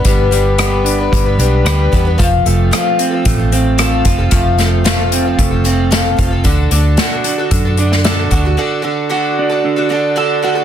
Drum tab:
HH |x-x-x-x-x-x-x-x-|x-x-x-x-x-x-x-x-|x-x-x-x-x-x-x-x-|x-x-x-x-x-x-x-x-|
SD |----r-------r---|----r-------r---|--o-o-------o---|----o------oo---|
BD |o-------o-----o-|o-------o-----o-|o-------o-----o-|o-------o-----o-|

HH |----------------|
SD |----------------|
BD |----------------|